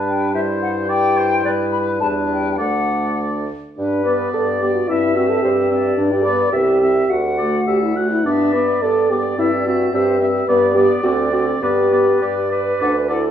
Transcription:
0.00 0.31 G2 soft
0.00 1.41 G3 soft
0.00 0.33 D4 soft
0.00 0.36 B4 soft
0.08 0.34 G5 medium
0.34 1.42 G2 soft
0.34 0.87 E4 soft
0.34 0.91 C5 soft
0.34 0.41 E5 medium
0.62 0.68 F#5 medium
0.88 2.02 E4 medium
0.88 1.19 D5 medium
0.88 1.43 G5 medium
1.18 1.47 C5 soft
1.44 2.03 G2 medium
1.44 2.00 G3 soft
1.44 2.01 B4 soft
1.44 1.51 D5 medium
1.72 1.78 B5 medium
2.00 2.61 E2 soft
2.00 2.61 G3 soft
2.00 2.59 D4 soft
2.00 2.58 B4 soft
2.00 2.07 A5 medium
2.32 2.52 G5 medium
2.52 2.58 G5 soft
2.58 3.48 D2 soft
2.58 3.48 A3 soft
2.58 3.46 D4 soft
2.58 3.46 D5 soft
2.58 3.18 F#5 medium
3.77 4.27 G2 soft
3.77 4.03 D4 medium
3.77 4.29 B4 soft
4.05 4.60 B3 soft
4.05 4.33 B4 medium
4.05 4.60 D5 soft
4.33 4.82 G2 medium
4.33 4.46 A4 medium
4.33 4.87 D5 medium
4.61 4.88 B3 soft
4.61 4.74 G4 medium
4.61 4.88 D5 soft
4.75 4.89 F#4 medium
4.88 5.36 G2 medium
4.88 5.15 C4 soft
4.88 5.16 E4 medium
4.88 5.42 E5 medium
4.88 5.15 E5 soft
5.15 5.69 C4 soft
5.15 5.31 F#4 medium
5.15 5.69 E5 soft
5.30 5.44 A4 medium
5.42 5.91 G2 medium
5.42 5.96 G4 medium
5.42 5.49 C5 medium
5.70 5.96 C4 soft
5.70 6.55 D5 medium
5.70 5.97 E5 soft
5.97 6.46 G2 medium
5.97 6.13 D4 medium
6.11 6.25 G4 medium
6.23 6.51 B3 soft
6.23 6.52 B4 medium
6.23 6.51 D5 soft
6.52 7.03 C2 medium
6.52 6.80 C4 soft
6.52 7.11 G4 medium
6.52 6.80 E5 soft
6.52 6.80 E5 medium
6.81 7.09 C4 soft
6.81 7.11 E5 soft
6.81 7.09 E5 soft
7.09 7.60 D2 medium
7.09 7.69 F#4 medium
7.09 7.96 F#5 medium
7.38 7.95 A3 soft
7.38 7.60 D5 soft
7.67 8.18 D2 soft
7.67 7.81 G4 medium
7.67 7.98 E5 soft
7.82 7.98 E4 medium
7.96 8.24 A3 soft
7.96 8.10 F#4 medium
7.96 8.25 F#5 soft
8.11 8.26 E4 medium
8.24 8.76 G2 soft
8.24 8.52 B3 soft
8.24 8.52 D4 medium
8.24 8.53 D5 soft
8.24 8.83 E5 medium
8.53 8.81 B3 soft
8.53 8.83 B4 medium
8.53 8.82 D5 soft
8.82 9.32 G2 soft
8.82 9.09 B3 soft
8.82 9.12 A4 medium
8.82 9.95 D5 soft
8.82 9.10 D5 soft
9.10 9.36 B3 soft
9.10 9.38 G4 medium
9.10 9.39 D5 soft
9.37 9.87 G2 soft
9.37 9.65 C4 soft
9.37 9.51 E4 medium
9.37 9.66 E5 soft
9.66 9.92 C4 soft
9.66 9.92 F#4 medium
9.66 9.93 E5 soft
9.92 10.42 G2 medium
9.92 10.19 C4 soft
9.92 10.28 G4 medium
9.92 10.20 C5 medium
9.92 10.21 E5 soft
10.20 10.47 C4 soft
10.20 10.26 E5 medium
10.20 10.48 E5 soft
10.47 10.89 G2 medium
10.47 10.74 B3 medium
10.47 10.73 B4 medium
10.47 11.03 D5 medium
10.47 10.75 D5 medium
10.75 11.02 B3 medium
10.75 10.88 G4 medium
10.75 11.04 D5 soft
11.03 11.55 D2 medium
11.03 11.31 C4 medium
11.03 11.16 F#4 medium
11.03 11.64 D5 medium
11.03 11.33 D5 medium
11.31 11.61 C4 medium
11.31 11.45 F#4 medium
11.31 11.62 D5 soft
11.61 12.15 G2 medium
11.61 11.91 B3 soft
11.61 12.50 G4 medium
11.61 12.52 B4 medium
11.61 11.91 D5 soft
11.91 12.21 B3 soft
11.91 12.21 D5 soft
12.22 12.74 G2 soft
12.22 12.35 G4 soft
12.22 12.51 D5 soft
12.51 13.10 B4 medium
12.51 12.80 D5 soft
12.81 13.31 D2 medium
12.81 12.94 D4 soft
12.81 12.93 D5 soft
12.81 12.89 F#5 medium
13.09 13.31 E4 medium
13.09 13.31 A4 medium
13.09 13.22 D5 soft
13.09 13.17 F#5 soft

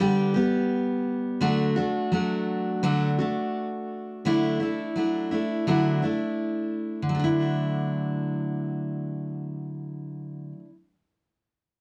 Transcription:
0.00 0.35 D3 medium
0.00 0.36 G3 medium
0.00 0.35 B3 medium
0.00 0.33 G4 medium
0.34 1.41 G3 soft
0.34 1.42 B3 soft
0.34 1.41 G4 medium
1.41 1.77 D3 medium
1.41 1.77 F#3 medium
1.41 1.77 A3 medium
1.41 1.76 D4 medium
1.41 1.75 F#4 medium
1.76 2.12 A3 soft
1.76 2.12 D4 soft
1.76 2.12 F#4 medium
2.12 2.83 F#3 medium
2.12 2.83 A3 medium
2.12 2.84 D4 medium
2.12 2.84 F#4 medium
2.83 3.18 D3 medium
2.83 3.19 F#3 medium
2.83 3.19 A3 medium
2.83 3.19 D4 medium
2.83 3.17 F#4 medium
3.18 4.26 A3 soft
3.18 4.26 D4 soft
3.18 4.26 F#4 soft
4.25 4.60 D3 medium
4.25 4.61 F#3 medium
4.25 4.61 A3 medium
4.25 4.60 D4 medium
4.25 4.59 E4 medium
4.60 4.96 A3 soft
4.60 4.96 D4 soft
4.60 4.95 E4 soft
4.96 5.31 F#3 medium
4.96 5.32 A3 medium
4.96 5.31 D4 medium
4.96 5.30 E4 medium
5.31 5.67 A3 soft
5.31 5.67 D4 soft
5.31 5.67 E4 soft
5.67 6.02 D3 medium
5.67 6.03 F#3 medium
5.67 6.03 A3 medium
5.67 6.03 D4 medium
5.67 6.01 E4 medium
6.02 7.14 A3 soft
6.02 7.19 D4 soft
6.02 7.12 E4 soft
7.02 10.52 D3 medium
7.09 10.59 F#3 medium
7.15 10.65 A3 medium
7.19 10.69 D4 medium
7.24 10.74 E4 medium

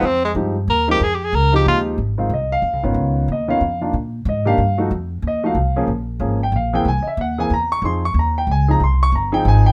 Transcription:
0.02 0.34 F2 medium
0.02 0.24 C4 loud
0.25 0.32 G#3 medium
0.35 0.67 G2 medium
0.35 0.54 F3 medium
0.35 0.54 G#3 medium
0.35 0.54 C4 medium
0.35 0.54 D#4 medium
0.35 0.54 G4 medium
0.68 1.00 D#2 medium
0.68 0.88 A#4 medium
0.88 0.99 F3 medium
0.88 1.00 G#3 medium
0.88 1.00 C4 medium
0.88 1.00 D#4 medium
0.88 1.05 G4 medium
0.88 1.00 A#4 medium
1.00 1.32 F2 medium
1.00 1.16 G#4 loud
1.14 1.26 G4 medium
1.24 1.37 G#4 medium
1.33 1.65 C#2 medium
1.33 1.55 A#4 medium
1.52 1.95 F3 medium
1.52 1.95 G#3 medium
1.52 1.96 C4 medium
1.52 1.96 D#4 medium
1.52 1.96 G4 medium
1.52 1.66 G4 medium
1.66 1.97 D#2 medium
1.66 1.79 F4 medium
1.98 2.29 G#1 medium
2.18 2.30 D#3 medium
2.18 2.29 G#3 medium
2.18 2.29 C4 medium
2.18 2.30 F4 medium
2.29 2.61 C2 medium
2.34 2.52 D#5 medium
2.52 2.82 F5 loud
2.62 2.73 D#2 medium
2.73 2.83 C2 medium
2.83 2.94 G#1 medium
2.83 3.26 D#3 medium
2.83 3.26 B3 medium
2.83 3.26 C#4 medium
2.83 3.26 F4 medium
2.94 3.27 C#2 medium
3.28 3.60 D#2 medium
3.28 3.50 D#5 medium
3.48 3.60 D#3 medium
3.48 3.60 B3 medium
3.48 3.60 C#4 medium
3.48 3.60 F4 medium
3.48 3.80 F5 medium
3.61 3.92 F2 medium
3.81 3.92 D#3 medium
3.81 3.93 A#3 medium
3.81 3.93 D4 medium
3.81 3.93 F4 medium
3.93 4.25 A#2 medium
4.25 4.57 G#2 medium
4.25 4.47 D#5 medium
4.45 4.57 D#3 medium
4.45 4.57 A#3 medium
4.45 4.57 D4 medium
4.45 4.57 G4 medium
4.45 4.77 F5 loud
4.58 4.90 G2 medium
4.78 4.89 F3 medium
4.78 4.89 A3 medium
4.78 4.89 D#4 medium
4.78 4.90 F#4 medium
4.91 5.22 F2 medium
5.22 5.54 D#2 medium
5.27 5.45 D#5 medium
5.43 5.55 F3 medium
5.43 5.55 A3 medium
5.43 5.55 D#4 medium
5.43 5.55 F#4 medium
5.43 5.75 F5 medium
5.55 5.87 C2 medium
5.76 5.87 F3 medium
5.76 5.87 A#3 medium
5.76 5.87 C#4 medium
5.76 5.87 G#4 medium
5.87 6.19 A#1 medium
6.20 6.51 G#1 medium
6.20 6.38 F3 medium
6.20 6.38 A#3 medium
6.20 6.39 C#4 medium
6.20 6.39 G#4 medium
6.43 6.54 G5 medium
6.52 6.84 A#1 medium
6.52 6.74 F5 medium
6.73 6.84 E3 medium
6.73 6.84 A#3 medium
6.73 6.84 C4 medium
6.73 6.85 G#4 medium
6.73 6.86 G5 medium
6.85 7.04 C2 medium
6.85 7.06 G#5 medium
7.02 7.04 D#5 medium
7.02 muted upright bass stroke soft
7.07 7.19 E5 medium
7.17 7.49 D#2 medium
7.17 7.39 F#5 medium
7.38 7.49 E3 medium
7.38 7.49 A#3 medium
7.38 7.49 C4 medium
7.38 7.49 G#4 medium
7.38 7.51 G#5 medium
7.50 7.81 E2 medium
7.50 7.71 A#5 medium
7.72 7.83 C#6 loud
7.82 8.14 F2 medium
7.82 8.01 F3 medium
7.82 8.01 C4 soft
7.82 8.01 D#4 soft
7.82 8.01 G#4 medium
7.82 8.03 C6 medium
8.05 8.16 C#6 loud
8.14 8.46 D#2 medium
8.19 8.37 A#5 medium
8.38 8.49 G5 medium
8.47 8.79 C#2 medium
8.51 8.69 G#5 medium
8.68 8.79 F3 medium
8.68 8.79 C4 medium
8.68 8.79 D#4 medium
8.68 8.79 G#4 medium
8.68 8.81 A#5 medium
8.80 9.11 C2 medium
8.80 9.01 C6 medium
9.03 9.13 C#6 loud
9.12 9.44 G1 medium
9.12 9.33 A#5 medium
9.32 9.72 F3 medium
9.32 9.72 C4 medium
9.32 9.72 D#4 medium
9.32 9.72 G#4 medium
9.32 9.45 G5 loud
9.45 9.72 G#1 medium
9.45 9.66 G#5 loud
9.66 9.72 G5 loud

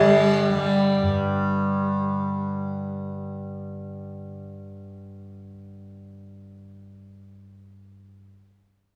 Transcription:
0.00 1.02 G2 medium
0.00 6.63 D3 medium
0.00 0.50 G3 medium
0.00 3.09 G3 medium
0.50 7.04 G3 medium
1.02 8.17 G2 medium

